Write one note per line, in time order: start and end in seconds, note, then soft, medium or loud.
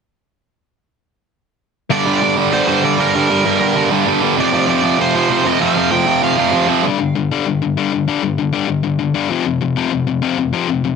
1.90 2.07 G2 medium
1.90 2.06 D3 medium
1.90 2.06 G3 medium
1.90 2.35 D5 medium
2.06 2.21 G2 medium
2.06 2.21 D3 medium
2.06 2.22 G3 medium
2.21 2.37 G2 medium
2.21 2.36 D3 loud
2.21 2.36 G3 medium
2.37 2.51 G2 medium
2.37 2.52 D3 medium
2.37 2.52 G3 medium
2.52 2.68 G2 medium
2.52 2.68 D3 medium
2.52 2.67 G3 medium
2.52 2.67 C5 medium
2.68 2.83 G2 medium
2.68 2.83 D3 medium
2.68 2.84 G3 medium
2.68 2.83 C5 medium
2.84 2.99 G2 medium
2.84 2.98 D3 medium
2.84 2.98 G3 medium
2.84 3.00 D5 medium
3.00 3.13 G2 medium
3.00 3.13 D3 medium
3.00 3.14 G3 medium
3.00 3.88 A#4 medium
3.14 3.30 G2 medium
3.14 3.29 D3 medium
3.14 3.29 G3 medium
3.30 3.44 G2 medium
3.30 3.44 D3 medium
3.30 3.45 G3 medium
3.45 3.61 G2 medium
3.45 3.61 D3 medium
3.45 3.60 G3 medium
3.61 3.75 G2 medium
3.61 3.76 D3 medium
3.61 3.76 G3 medium
3.76 3.91 G2 medium
3.76 3.90 D3 medium
3.76 3.90 G3 medium
3.91 4.05 G2 medium
3.91 4.06 D3 medium
3.91 4.07 G3 medium
4.07 4.22 G2 medium
4.07 4.22 D3 medium
4.07 4.21 G3 medium
4.22 4.38 G2 medium
4.22 4.37 D3 medium
4.22 4.37 G3 medium
4.38 4.53 F2 medium
4.38 4.52 C3 medium
4.38 4.52 F3 medium
4.38 5.01 D5 medium
4.52 4.67 F2 medium
4.52 4.66 C3 medium
4.52 4.67 F3 medium
4.67 4.83 F2 medium
4.67 4.82 C3 loud
4.67 4.82 F3 loud
4.83 4.98 F2 medium
4.83 4.98 C3 medium
4.83 4.98 F3 medium
4.99 5.14 F2 medium
4.99 5.13 C3 medium
4.99 5.13 F3 medium
4.99 5.14 C5 medium
5.14 5.29 F2 medium
5.14 5.29 C3 medium
5.14 5.29 F3 medium
5.14 5.47 C5 medium
5.30 5.44 F2 medium
5.30 5.44 C3 medium
5.30 5.43 F3 medium
5.45 5.59 F2 medium
5.45 5.59 C3 medium
5.45 5.60 F3 medium
5.45 5.62 D#5 medium
5.60 5.75 F2 medium
5.60 5.75 C3 medium
5.60 5.74 F3 medium
5.60 5.91 F5 medium
5.75 5.90 F2 medium
5.75 5.90 C3 medium
5.75 5.91 F3 medium
5.91 6.06 F2 medium
5.91 6.06 C3 medium
5.91 6.06 F3 loud
5.91 6.20 G5 medium
6.07 6.21 F2 medium
6.07 6.22 C3 medium
6.07 6.22 F3 medium
6.23 6.37 F2 medium
6.23 6.37 C3 medium
6.23 6.36 F3 medium
6.23 6.66 F5 medium
6.37 6.51 F2 medium
6.37 6.52 C3 medium
6.37 6.52 F3 medium
6.52 6.68 F2 medium
6.52 6.67 C3 medium
6.52 6.66 F3 medium
6.68 6.83 F2 medium
6.68 6.83 C3 medium
6.68 6.83 F3 medium
6.83 6.98 G2 medium
6.83 6.98 D3 medium
6.83 6.99 G3 medium
6.99 7.13 G2 medium
6.99 7.13 D3 medium
7.15 7.29 G2 medium
7.15 7.29 D3 medium
7.31 7.45 G2 medium
7.31 7.46 D3 loud
7.31 7.46 G3 loud
7.47 7.60 G2 medium
7.47 7.60 D3 medium
7.62 7.75 G2 medium
7.62 7.75 D3 medium
7.77 7.91 G2 medium
7.77 7.92 D3 medium
7.77 7.92 G3 medium
7.93 8.06 G2 medium
7.93 8.06 D3 medium
8.08 8.22 G2 medium
8.08 8.22 D3 medium
8.08 8.23 G3 medium
8.23 8.37 G2 medium
8.23 8.37 D3 medium
8.38 8.51 G2 medium
8.38 8.52 D3 medium
8.53 8.67 G2 medium
8.53 8.67 D3 medium
8.53 8.68 G3 medium
8.68 8.82 G2 medium
8.68 8.83 D3 medium
8.83 8.98 G2 medium
8.83 8.98 D3 medium
8.99 9.13 G2 medium
8.99 9.13 D3 medium
9.14 9.29 G2 medium
9.14 9.29 D3 medium
9.14 9.30 G3 loud
9.29 9.44 F2 medium
9.29 9.44 C3 medium
9.29 9.45 F3 medium
9.45 9.60 F2 medium
9.45 9.60 C3 medium
9.61 9.75 F2 medium
9.61 9.75 C3 medium
9.76 9.90 F2 medium
9.76 9.91 C3 loud
9.76 9.91 F3 medium
9.91 10.06 F2 medium
9.91 10.06 C3 medium
10.07 10.21 F2 medium
10.07 10.22 C3 medium
10.22 10.37 F2 loud
10.22 10.37 C3 medium
10.22 10.38 F3 loud
10.38 10.52 F2 medium
10.38 10.52 C3 medium
10.53 10.67 F2 medium
10.53 10.68 C3 medium
10.53 10.69 F3 medium
10.69 10.83 F2 medium
10.69 10.83 C3 medium
10.84 10.96 F2 medium
10.84 10.96 C3 medium